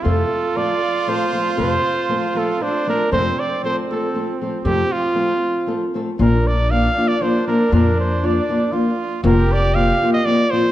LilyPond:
<<
  \new Staff \with { instrumentName = "Trumpet" } { \time 3/4 \key f \major \tempo 4 = 118 a'4 d''4 c''4 | c''4. a'8 c''8 bes'8 | c''8 d''8 c''8 a'4 r8 | g'8 f'2 r8 |
\key bes \major bes'8 d''8 f''8. d''16 c''8 bes'8 | bes'8 c''8 d''4 r4 | bes'8 d''8 f''8. ees''16 d''8 c''8 | }
  \new Staff \with { instrumentName = "Trumpet" } { \time 3/4 \key f \major f'2.~ | f'2 d'4 | c'2.~ | c'2~ c'8 r8 |
\key bes \major d'2.~ | d'2 f'4 | g'2~ g'8 r8 | }
  \new Staff \with { instrumentName = "Nylon-string guitar" } { \time 3/4 \key f \major <f, c f a c' a'>8 r8 <f a c' a'>8 r8 <f a c' a'>8 <f a c' a'>8 | <f, c f a c' a'>8 r8 <f a c' a'>8 <f a c' a'>8 <f a c' a'>8 <f a c' a'>8 | <f, c f a c' a'>8 r8 <f a c' a'>8 <f a c' a'>8 <f a c' a'>8 <f a c' a'>8 | <f, c f a c' a'>8 r8 <f a c' a'>8 r8 <f a c' a'>8 <f a c' a'>8 |
\key bes \major <bes, f bes d' f'>8 r8 <f bes d' f'>8 <f bes d' f'>8 <f bes d' f'>8 <f bes d' f'>8 | <bes, f bes d' f'>8 r8 <f bes d' f'>8 <f bes d' f'>8 <f bes d' f'>8 r8 | <f, c f bes c' f'>8 r8 <f bes c' f'>8 <f bes c' f'>8 <f bes c' f'>8 <f bes c' f'>8 | }
  \new Staff \with { instrumentName = "Upright bass" } { \clef bass \time 3/4 \key f \major f,8 r2 r8 | f,8 r2 r8 | f,8 r2 r8 | f,8 r2 r8 |
\key bes \major bes,,2 r4 | f,2 r4 | f,,2 r4 | }
>>